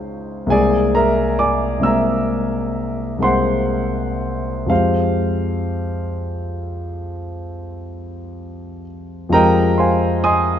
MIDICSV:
0, 0, Header, 1, 2, 480
1, 0, Start_track
1, 0, Key_signature, -4, "minor"
1, 0, Tempo, 884956
1, 280, Time_signature, 9, 3, 24, 8
1, 1246, Tempo, 950872
1, 2206, Tempo, 1015228
1, 2686, Tempo, 1056338
1, 3646, Tempo, 1005025
1, 4126, Tempo, 1000000
1, 4606, Tempo, 914634
1, 5267, End_track
2, 0, Start_track
2, 0, Title_t, "Grand piano"
2, 0, Program_c, 0, 0
2, 0, Control_c, 0, 64, 127
2, 0, Note_on_c, 0, 37, 35
2, 0, Note_on_c, 0, 56, 33
2, 0, Note_on_c, 0, 61, 31
2, 0, Note_on_c, 0, 63, 37
2, 0, Note_on_c, 0, 65, 34
2, 0, Note_on_c, 0, 72, 58
2, 0, Note_on_c, 0, 79, 58
2, 0, Note_on_c, 0, 80, 30
2, 0, Note_on_c, 0, 84, 74
2, 0, Note_on_c, 0, 85, 31
2, 0, Note_on_c, 0, 87, 29
2, 0, Note_on_c, 0, 89, 29
2, 245, Note_off_c, 0, 37, 0
2, 248, Note_off_c, 0, 56, 0
2, 251, Note_off_c, 0, 61, 0
2, 252, Note_on_c, 0, 36, 45
2, 255, Note_off_c, 0, 63, 0
2, 255, Note_off_c, 0, 65, 0
2, 257, Note_on_c, 0, 56, 33
2, 259, Note_off_c, 0, 80, 0
2, 260, Note_off_c, 0, 72, 0
2, 260, Note_off_c, 0, 79, 0
2, 261, Note_on_c, 0, 58, 31
2, 264, Note_on_c, 0, 60, 37
2, 267, Note_off_c, 0, 85, 0
2, 273, Note_on_c, 0, 80, 71
2, 276, Note_off_c, 0, 87, 0
2, 279, Note_off_c, 0, 84, 0
2, 281, Note_on_c, 0, 68, 58
2, 281, Note_on_c, 0, 74, 58
2, 283, Note_off_c, 0, 89, 0
2, 290, Control_c, 0, 64, 0
2, 389, Control_c, 0, 64, 127
2, 502, Note_off_c, 0, 68, 0
2, 502, Note_off_c, 0, 74, 0
2, 514, Note_off_c, 0, 80, 0
2, 514, Note_on_c, 0, 82, 68
2, 519, Note_on_c, 0, 76, 51
2, 521, Note_on_c, 0, 70, 50
2, 742, Note_off_c, 0, 76, 0
2, 743, Note_off_c, 0, 70, 0
2, 754, Note_on_c, 0, 86, 64
2, 756, Note_off_c, 0, 82, 0
2, 758, Note_on_c, 0, 74, 46
2, 760, Note_on_c, 0, 80, 50
2, 965, Note_off_c, 0, 36, 0
2, 967, Note_off_c, 0, 56, 0
2, 969, Note_off_c, 0, 58, 0
2, 971, Note_off_c, 0, 60, 0
2, 973, Note_on_c, 0, 36, 35
2, 980, Note_on_c, 0, 56, 31
2, 982, Note_on_c, 0, 58, 30
2, 984, Note_off_c, 0, 74, 0
2, 985, Note_off_c, 0, 80, 0
2, 987, Note_on_c, 0, 60, 31
2, 994, Note_on_c, 0, 88, 59
2, 996, Note_on_c, 0, 68, 34
2, 999, Note_off_c, 0, 86, 0
2, 1002, Note_on_c, 0, 82, 41
2, 1004, Note_on_c, 0, 76, 50
2, 1686, Note_off_c, 0, 36, 0
2, 1691, Note_off_c, 0, 56, 0
2, 1692, Note_off_c, 0, 58, 0
2, 1694, Note_off_c, 0, 60, 0
2, 1694, Note_on_c, 0, 36, 32
2, 1699, Note_off_c, 0, 68, 0
2, 1700, Note_on_c, 0, 56, 28
2, 1701, Note_off_c, 0, 82, 0
2, 1702, Note_off_c, 0, 76, 0
2, 1707, Note_on_c, 0, 58, 27
2, 1708, Note_on_c, 0, 60, 25
2, 1715, Note_on_c, 0, 84, 68
2, 1718, Note_off_c, 0, 88, 0
2, 1718, Note_on_c, 0, 68, 24
2, 1722, Note_on_c, 0, 72, 47
2, 1722, Note_on_c, 0, 78, 47
2, 2410, Note_off_c, 0, 36, 0
2, 2413, Note_off_c, 0, 56, 0
2, 2417, Note_off_c, 0, 58, 0
2, 2417, Note_off_c, 0, 60, 0
2, 2421, Note_off_c, 0, 68, 0
2, 2424, Note_off_c, 0, 72, 0
2, 2424, Note_off_c, 0, 78, 0
2, 2424, Note_on_c, 0, 41, 31
2, 2430, Note_on_c, 0, 53, 31
2, 2435, Note_on_c, 0, 56, 29
2, 2436, Note_on_c, 0, 60, 28
2, 2439, Note_off_c, 0, 84, 0
2, 2441, Note_on_c, 0, 77, 63
2, 2444, Note_on_c, 0, 67, 26
2, 2449, Note_on_c, 0, 72, 42
2, 2450, Note_on_c, 0, 65, 38
2, 2452, Control_c, 0, 64, 0
2, 2545, Control_c, 0, 64, 127
2, 4357, Note_off_c, 0, 65, 0
2, 4357, Note_off_c, 0, 72, 0
2, 4372, Note_off_c, 0, 77, 0
2, 4578, Note_off_c, 0, 41, 0
2, 4582, Note_off_c, 0, 53, 0
2, 4584, Note_off_c, 0, 56, 0
2, 4585, Note_off_c, 0, 60, 0
2, 4586, Note_on_c, 0, 41, 41
2, 4589, Note_off_c, 0, 67, 0
2, 4591, Note_on_c, 0, 53, 37
2, 4598, Note_on_c, 0, 56, 35
2, 4600, Note_on_c, 0, 60, 36
2, 4603, Note_on_c, 0, 82, 81
2, 4604, Note_on_c, 0, 67, 34
2, 4609, Note_on_c, 0, 79, 61
2, 4611, Note_on_c, 0, 70, 61
2, 4611, Note_on_c, 0, 75, 60
2, 4615, Control_c, 0, 64, 0
2, 4716, Control_c, 0, 64, 127
2, 4832, Note_off_c, 0, 79, 0
2, 4833, Note_off_c, 0, 70, 0
2, 4833, Note_off_c, 0, 75, 0
2, 4840, Note_on_c, 0, 84, 55
2, 4846, Note_off_c, 0, 82, 0
2, 4848, Note_on_c, 0, 72, 41
2, 4849, Note_on_c, 0, 77, 42
2, 4851, Note_on_c, 0, 80, 46
2, 5070, Note_off_c, 0, 72, 0
2, 5071, Note_off_c, 0, 77, 0
2, 5072, Note_off_c, 0, 80, 0
2, 5078, Note_off_c, 0, 84, 0
2, 5082, Note_on_c, 0, 87, 76
2, 5083, Note_on_c, 0, 80, 59
2, 5085, Note_on_c, 0, 84, 55
2, 5086, Note_on_c, 0, 75, 57
2, 5267, Note_off_c, 0, 41, 0
2, 5267, Note_off_c, 0, 53, 0
2, 5267, Note_off_c, 0, 56, 0
2, 5267, Note_off_c, 0, 60, 0
2, 5267, Note_off_c, 0, 67, 0
2, 5267, Note_off_c, 0, 75, 0
2, 5267, Note_off_c, 0, 80, 0
2, 5267, Note_off_c, 0, 84, 0
2, 5267, Note_off_c, 0, 87, 0
2, 5267, End_track
0, 0, End_of_file